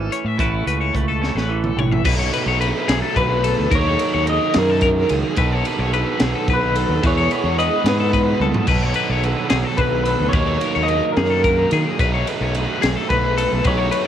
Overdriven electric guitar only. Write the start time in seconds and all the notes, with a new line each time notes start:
2.05 B2 F#3 A3 D#4
3.70 D#3 F#3 A#3 D#4
5.36 B2 D#3 F#3 B3 D#4 A4
7.03 E3 G#3 B3 E4 G#4
8.67 B2 D#3 F#3 B3 D#4 A4
10.34 D#3 F#3 A#3 D#4
11.99 B2 F#3 A3
12.03 D#4
13.64 B2 F#3 A3 D#4